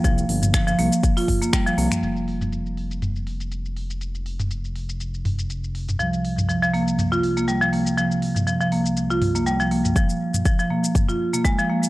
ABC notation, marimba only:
X:1
M:4/4
L:1/16
Q:"Swing 16ths" 1/4=121
K:Cphr
V:1 name="Marimba" clef=bass
F, z3 F, F, B, z2 F z B, G, F, B, z | z16 | z16 | F, z3 F, F, B, z2 F z B, G, F, B, z |
F, z3 F, F, B, z2 F z B, G, F, B, z | F, z3 F, F, B, z2 F z B, A, F, B, z |]